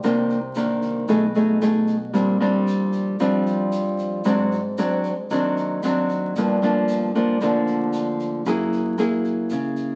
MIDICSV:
0, 0, Header, 1, 4, 480
1, 0, Start_track
1, 0, Tempo, 526778
1, 31, Time_signature, 4, 2, 24, 8
1, 9068, End_track
2, 0, Start_track
2, 0, Title_t, "Nylon-string guitar"
2, 0, Program_c, 0, 24
2, 32, Note_on_c, 0, 48, 52
2, 38, Note_on_c, 0, 51, 58
2, 38, Note_on_c, 0, 58, 56
2, 40, Note_on_c, 0, 62, 57
2, 342, Note_off_c, 0, 58, 0
2, 343, Note_off_c, 0, 51, 0
2, 345, Note_off_c, 0, 62, 0
2, 510, Note_on_c, 0, 51, 52
2, 517, Note_on_c, 0, 58, 54
2, 519, Note_on_c, 0, 62, 61
2, 968, Note_off_c, 0, 48, 0
2, 972, Note_off_c, 0, 51, 0
2, 973, Note_off_c, 0, 58, 0
2, 976, Note_off_c, 0, 62, 0
2, 988, Note_on_c, 0, 47, 59
2, 991, Note_on_c, 0, 57, 58
2, 996, Note_on_c, 0, 63, 53
2, 999, Note_on_c, 0, 68, 65
2, 1132, Note_off_c, 0, 57, 0
2, 1135, Note_off_c, 0, 63, 0
2, 1136, Note_off_c, 0, 68, 0
2, 1233, Note_on_c, 0, 57, 56
2, 1239, Note_on_c, 0, 63, 61
2, 1243, Note_on_c, 0, 68, 65
2, 1435, Note_off_c, 0, 57, 0
2, 1436, Note_off_c, 0, 63, 0
2, 1437, Note_off_c, 0, 68, 0
2, 1470, Note_on_c, 0, 57, 59
2, 1475, Note_on_c, 0, 63, 60
2, 1479, Note_on_c, 0, 68, 62
2, 1780, Note_off_c, 0, 57, 0
2, 1782, Note_off_c, 0, 63, 0
2, 1784, Note_off_c, 0, 68, 0
2, 1926, Note_off_c, 0, 47, 0
2, 1945, Note_on_c, 0, 55, 55
2, 1948, Note_on_c, 0, 46, 53
2, 1955, Note_on_c, 0, 60, 59
2, 1955, Note_on_c, 0, 62, 58
2, 2150, Note_off_c, 0, 55, 0
2, 2153, Note_off_c, 0, 60, 0
2, 2155, Note_off_c, 0, 62, 0
2, 2192, Note_on_c, 0, 55, 60
2, 2195, Note_on_c, 0, 60, 61
2, 2195, Note_on_c, 0, 62, 63
2, 2874, Note_off_c, 0, 55, 0
2, 2874, Note_off_c, 0, 62, 0
2, 2875, Note_off_c, 0, 60, 0
2, 2886, Note_off_c, 0, 46, 0
2, 2915, Note_on_c, 0, 53, 57
2, 2918, Note_on_c, 0, 55, 63
2, 2920, Note_on_c, 0, 60, 56
2, 2924, Note_on_c, 0, 62, 66
2, 3836, Note_off_c, 0, 55, 0
2, 3838, Note_off_c, 0, 60, 0
2, 3838, Note_off_c, 0, 62, 0
2, 3850, Note_off_c, 0, 53, 0
2, 3874, Note_on_c, 0, 44, 55
2, 3878, Note_on_c, 0, 54, 54
2, 3879, Note_on_c, 0, 60, 51
2, 3880, Note_on_c, 0, 62, 66
2, 4183, Note_off_c, 0, 54, 0
2, 4183, Note_off_c, 0, 60, 0
2, 4185, Note_off_c, 0, 62, 0
2, 4358, Note_on_c, 0, 54, 61
2, 4361, Note_on_c, 0, 60, 59
2, 4365, Note_on_c, 0, 62, 59
2, 4664, Note_off_c, 0, 54, 0
2, 4664, Note_off_c, 0, 60, 0
2, 4667, Note_off_c, 0, 62, 0
2, 4810, Note_off_c, 0, 44, 0
2, 4835, Note_on_c, 0, 51, 57
2, 4839, Note_on_c, 0, 54, 62
2, 4843, Note_on_c, 0, 60, 57
2, 4849, Note_on_c, 0, 62, 65
2, 5275, Note_off_c, 0, 54, 0
2, 5279, Note_off_c, 0, 60, 0
2, 5281, Note_off_c, 0, 62, 0
2, 5324, Note_on_c, 0, 54, 59
2, 5328, Note_on_c, 0, 60, 55
2, 5332, Note_on_c, 0, 62, 58
2, 5769, Note_off_c, 0, 51, 0
2, 5778, Note_off_c, 0, 54, 0
2, 5781, Note_off_c, 0, 60, 0
2, 5781, Note_off_c, 0, 62, 0
2, 5806, Note_on_c, 0, 43, 54
2, 5810, Note_on_c, 0, 53, 51
2, 5811, Note_on_c, 0, 58, 53
2, 5817, Note_on_c, 0, 62, 61
2, 6001, Note_off_c, 0, 58, 0
2, 6002, Note_off_c, 0, 53, 0
2, 6005, Note_off_c, 0, 62, 0
2, 6038, Note_on_c, 0, 53, 56
2, 6044, Note_on_c, 0, 58, 54
2, 6046, Note_on_c, 0, 62, 66
2, 6476, Note_off_c, 0, 53, 0
2, 6479, Note_off_c, 0, 58, 0
2, 6479, Note_off_c, 0, 62, 0
2, 6516, Note_on_c, 0, 53, 59
2, 6519, Note_on_c, 0, 58, 62
2, 6523, Note_on_c, 0, 62, 68
2, 6715, Note_off_c, 0, 53, 0
2, 6715, Note_off_c, 0, 58, 0
2, 6718, Note_off_c, 0, 62, 0
2, 6735, Note_off_c, 0, 43, 0
2, 6758, Note_on_c, 0, 50, 59
2, 6763, Note_on_c, 0, 53, 63
2, 6764, Note_on_c, 0, 58, 56
2, 6766, Note_on_c, 0, 62, 62
2, 7677, Note_off_c, 0, 53, 0
2, 7677, Note_off_c, 0, 62, 0
2, 7678, Note_off_c, 0, 58, 0
2, 7690, Note_off_c, 0, 50, 0
2, 7716, Note_on_c, 0, 58, 50
2, 7717, Note_on_c, 0, 54, 53
2, 7719, Note_on_c, 0, 64, 56
2, 7722, Note_on_c, 0, 68, 58
2, 8154, Note_off_c, 0, 58, 0
2, 8156, Note_off_c, 0, 64, 0
2, 8157, Note_off_c, 0, 68, 0
2, 8187, Note_on_c, 0, 58, 53
2, 8194, Note_on_c, 0, 64, 52
2, 8196, Note_on_c, 0, 68, 62
2, 8649, Note_off_c, 0, 54, 0
2, 8673, Note_on_c, 0, 49, 60
2, 9068, Note_off_c, 0, 49, 0
2, 9068, Note_off_c, 0, 58, 0
2, 9068, Note_off_c, 0, 64, 0
2, 9068, Note_off_c, 0, 68, 0
2, 9068, End_track
3, 0, Start_track
3, 0, Title_t, "Upright bass"
3, 0, Program_c, 1, 32
3, 40, Note_on_c, 1, 36, 96
3, 959, Note_off_c, 1, 36, 0
3, 996, Note_on_c, 1, 35, 88
3, 1917, Note_off_c, 1, 35, 0
3, 1957, Note_on_c, 1, 34, 87
3, 2878, Note_off_c, 1, 34, 0
3, 2914, Note_on_c, 1, 41, 89
3, 3837, Note_off_c, 1, 41, 0
3, 3872, Note_on_c, 1, 32, 94
3, 4795, Note_off_c, 1, 32, 0
3, 4835, Note_on_c, 1, 39, 80
3, 5756, Note_off_c, 1, 39, 0
3, 5797, Note_on_c, 1, 31, 95
3, 6717, Note_off_c, 1, 31, 0
3, 6756, Note_on_c, 1, 38, 86
3, 7676, Note_off_c, 1, 38, 0
3, 7711, Note_on_c, 1, 30, 94
3, 8633, Note_off_c, 1, 30, 0
3, 8667, Note_on_c, 1, 37, 84
3, 9068, Note_off_c, 1, 37, 0
3, 9068, End_track
4, 0, Start_track
4, 0, Title_t, "Drums"
4, 30, Note_on_c, 9, 82, 67
4, 37, Note_on_c, 9, 36, 59
4, 39, Note_on_c, 9, 37, 62
4, 39, Note_on_c, 9, 42, 42
4, 121, Note_off_c, 9, 82, 0
4, 128, Note_off_c, 9, 36, 0
4, 130, Note_off_c, 9, 37, 0
4, 130, Note_off_c, 9, 42, 0
4, 274, Note_on_c, 9, 82, 26
4, 281, Note_on_c, 9, 42, 25
4, 365, Note_off_c, 9, 82, 0
4, 372, Note_off_c, 9, 42, 0
4, 501, Note_on_c, 9, 82, 66
4, 517, Note_on_c, 9, 37, 52
4, 517, Note_on_c, 9, 42, 41
4, 592, Note_off_c, 9, 82, 0
4, 608, Note_off_c, 9, 37, 0
4, 608, Note_off_c, 9, 42, 0
4, 748, Note_on_c, 9, 82, 25
4, 756, Note_on_c, 9, 36, 25
4, 757, Note_on_c, 9, 42, 27
4, 839, Note_off_c, 9, 82, 0
4, 847, Note_off_c, 9, 36, 0
4, 848, Note_off_c, 9, 42, 0
4, 988, Note_on_c, 9, 82, 62
4, 997, Note_on_c, 9, 36, 59
4, 997, Note_on_c, 9, 42, 39
4, 1079, Note_off_c, 9, 82, 0
4, 1088, Note_off_c, 9, 36, 0
4, 1089, Note_off_c, 9, 42, 0
4, 1229, Note_on_c, 9, 82, 26
4, 1320, Note_off_c, 9, 82, 0
4, 1474, Note_on_c, 9, 82, 64
4, 1475, Note_on_c, 9, 37, 58
4, 1565, Note_off_c, 9, 82, 0
4, 1566, Note_off_c, 9, 37, 0
4, 1708, Note_on_c, 9, 82, 27
4, 1710, Note_on_c, 9, 42, 28
4, 1714, Note_on_c, 9, 36, 24
4, 1799, Note_off_c, 9, 82, 0
4, 1801, Note_off_c, 9, 42, 0
4, 1805, Note_off_c, 9, 36, 0
4, 1951, Note_on_c, 9, 42, 45
4, 1953, Note_on_c, 9, 82, 68
4, 1954, Note_on_c, 9, 36, 61
4, 2042, Note_off_c, 9, 42, 0
4, 2044, Note_off_c, 9, 82, 0
4, 2045, Note_off_c, 9, 36, 0
4, 2191, Note_on_c, 9, 37, 60
4, 2191, Note_on_c, 9, 42, 27
4, 2202, Note_on_c, 9, 82, 26
4, 2282, Note_off_c, 9, 37, 0
4, 2282, Note_off_c, 9, 42, 0
4, 2293, Note_off_c, 9, 82, 0
4, 2433, Note_on_c, 9, 42, 40
4, 2440, Note_on_c, 9, 82, 71
4, 2524, Note_off_c, 9, 42, 0
4, 2531, Note_off_c, 9, 82, 0
4, 2669, Note_on_c, 9, 82, 28
4, 2676, Note_on_c, 9, 36, 24
4, 2677, Note_on_c, 9, 42, 28
4, 2760, Note_off_c, 9, 82, 0
4, 2767, Note_off_c, 9, 36, 0
4, 2769, Note_off_c, 9, 42, 0
4, 2912, Note_on_c, 9, 82, 65
4, 2917, Note_on_c, 9, 36, 63
4, 2920, Note_on_c, 9, 37, 61
4, 3003, Note_off_c, 9, 82, 0
4, 3008, Note_off_c, 9, 36, 0
4, 3011, Note_off_c, 9, 37, 0
4, 3160, Note_on_c, 9, 82, 26
4, 3161, Note_on_c, 9, 42, 28
4, 3251, Note_off_c, 9, 82, 0
4, 3252, Note_off_c, 9, 42, 0
4, 3391, Note_on_c, 9, 82, 64
4, 3397, Note_on_c, 9, 42, 41
4, 3482, Note_off_c, 9, 82, 0
4, 3488, Note_off_c, 9, 42, 0
4, 3633, Note_on_c, 9, 82, 28
4, 3635, Note_on_c, 9, 36, 24
4, 3638, Note_on_c, 9, 42, 30
4, 3724, Note_off_c, 9, 82, 0
4, 3726, Note_off_c, 9, 36, 0
4, 3729, Note_off_c, 9, 42, 0
4, 3867, Note_on_c, 9, 82, 65
4, 3875, Note_on_c, 9, 36, 61
4, 3876, Note_on_c, 9, 37, 63
4, 3876, Note_on_c, 9, 42, 47
4, 3958, Note_off_c, 9, 82, 0
4, 3966, Note_off_c, 9, 36, 0
4, 3967, Note_off_c, 9, 37, 0
4, 3967, Note_off_c, 9, 42, 0
4, 4117, Note_on_c, 9, 42, 27
4, 4119, Note_on_c, 9, 82, 26
4, 4208, Note_off_c, 9, 42, 0
4, 4210, Note_off_c, 9, 82, 0
4, 4353, Note_on_c, 9, 82, 68
4, 4357, Note_on_c, 9, 37, 52
4, 4357, Note_on_c, 9, 42, 42
4, 4445, Note_off_c, 9, 82, 0
4, 4448, Note_off_c, 9, 37, 0
4, 4448, Note_off_c, 9, 42, 0
4, 4591, Note_on_c, 9, 82, 25
4, 4596, Note_on_c, 9, 36, 23
4, 4598, Note_on_c, 9, 42, 28
4, 4682, Note_off_c, 9, 82, 0
4, 4687, Note_off_c, 9, 36, 0
4, 4690, Note_off_c, 9, 42, 0
4, 4832, Note_on_c, 9, 82, 60
4, 4835, Note_on_c, 9, 36, 56
4, 4836, Note_on_c, 9, 42, 40
4, 4923, Note_off_c, 9, 82, 0
4, 4926, Note_off_c, 9, 36, 0
4, 4927, Note_off_c, 9, 42, 0
4, 5076, Note_on_c, 9, 82, 26
4, 5077, Note_on_c, 9, 42, 26
4, 5168, Note_off_c, 9, 42, 0
4, 5168, Note_off_c, 9, 82, 0
4, 5311, Note_on_c, 9, 82, 68
4, 5313, Note_on_c, 9, 37, 57
4, 5313, Note_on_c, 9, 42, 36
4, 5402, Note_off_c, 9, 82, 0
4, 5404, Note_off_c, 9, 37, 0
4, 5404, Note_off_c, 9, 42, 0
4, 5551, Note_on_c, 9, 82, 26
4, 5553, Note_on_c, 9, 36, 24
4, 5553, Note_on_c, 9, 42, 26
4, 5642, Note_off_c, 9, 82, 0
4, 5644, Note_off_c, 9, 36, 0
4, 5644, Note_off_c, 9, 42, 0
4, 5792, Note_on_c, 9, 42, 39
4, 5795, Note_on_c, 9, 36, 62
4, 5795, Note_on_c, 9, 82, 67
4, 5883, Note_off_c, 9, 42, 0
4, 5886, Note_off_c, 9, 36, 0
4, 5887, Note_off_c, 9, 82, 0
4, 6034, Note_on_c, 9, 37, 60
4, 6034, Note_on_c, 9, 42, 26
4, 6036, Note_on_c, 9, 82, 26
4, 6125, Note_off_c, 9, 37, 0
4, 6125, Note_off_c, 9, 42, 0
4, 6127, Note_off_c, 9, 82, 0
4, 6271, Note_on_c, 9, 82, 72
4, 6275, Note_on_c, 9, 42, 37
4, 6362, Note_off_c, 9, 82, 0
4, 6366, Note_off_c, 9, 42, 0
4, 6514, Note_on_c, 9, 36, 23
4, 6519, Note_on_c, 9, 42, 27
4, 6519, Note_on_c, 9, 82, 26
4, 6606, Note_off_c, 9, 36, 0
4, 6610, Note_off_c, 9, 42, 0
4, 6610, Note_off_c, 9, 82, 0
4, 6751, Note_on_c, 9, 82, 65
4, 6753, Note_on_c, 9, 37, 58
4, 6753, Note_on_c, 9, 42, 43
4, 6754, Note_on_c, 9, 36, 57
4, 6842, Note_off_c, 9, 82, 0
4, 6844, Note_off_c, 9, 37, 0
4, 6844, Note_off_c, 9, 42, 0
4, 6845, Note_off_c, 9, 36, 0
4, 6991, Note_on_c, 9, 82, 25
4, 6995, Note_on_c, 9, 42, 28
4, 7082, Note_off_c, 9, 82, 0
4, 7086, Note_off_c, 9, 42, 0
4, 7226, Note_on_c, 9, 82, 66
4, 7233, Note_on_c, 9, 42, 42
4, 7317, Note_off_c, 9, 82, 0
4, 7324, Note_off_c, 9, 42, 0
4, 7471, Note_on_c, 9, 36, 25
4, 7471, Note_on_c, 9, 82, 26
4, 7473, Note_on_c, 9, 42, 31
4, 7562, Note_off_c, 9, 36, 0
4, 7562, Note_off_c, 9, 82, 0
4, 7564, Note_off_c, 9, 42, 0
4, 7706, Note_on_c, 9, 82, 66
4, 7710, Note_on_c, 9, 36, 60
4, 7712, Note_on_c, 9, 37, 64
4, 7797, Note_off_c, 9, 82, 0
4, 7801, Note_off_c, 9, 36, 0
4, 7803, Note_off_c, 9, 37, 0
4, 7950, Note_on_c, 9, 42, 29
4, 7953, Note_on_c, 9, 82, 26
4, 8041, Note_off_c, 9, 42, 0
4, 8044, Note_off_c, 9, 82, 0
4, 8184, Note_on_c, 9, 37, 57
4, 8184, Note_on_c, 9, 42, 43
4, 8184, Note_on_c, 9, 82, 68
4, 8276, Note_off_c, 9, 37, 0
4, 8276, Note_off_c, 9, 42, 0
4, 8276, Note_off_c, 9, 82, 0
4, 8425, Note_on_c, 9, 36, 22
4, 8425, Note_on_c, 9, 42, 27
4, 8426, Note_on_c, 9, 82, 27
4, 8516, Note_off_c, 9, 36, 0
4, 8516, Note_off_c, 9, 42, 0
4, 8517, Note_off_c, 9, 82, 0
4, 8655, Note_on_c, 9, 82, 62
4, 8662, Note_on_c, 9, 42, 43
4, 8665, Note_on_c, 9, 36, 59
4, 8747, Note_off_c, 9, 82, 0
4, 8753, Note_off_c, 9, 42, 0
4, 8756, Note_off_c, 9, 36, 0
4, 8897, Note_on_c, 9, 82, 24
4, 8908, Note_on_c, 9, 42, 27
4, 8988, Note_off_c, 9, 82, 0
4, 9000, Note_off_c, 9, 42, 0
4, 9068, End_track
0, 0, End_of_file